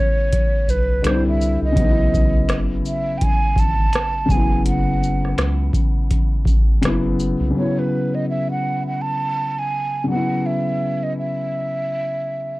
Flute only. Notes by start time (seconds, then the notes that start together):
Already playing: C#5
0.70 B4
1.06 C5
1.28 E5
1.64 D#5
2.87 E5
3.18 G5
3.24 G#5
3.60 A5
4.31 G#5
4.68 F#5
7.58 C#5
7.79 B4
8.15 D#5
8.30 E5
8.51 F#5
8.87 F#5
9.02 A5
9.59 G#5
10.10 F#5
10.46 E5
11.03 D#5
11.19 E5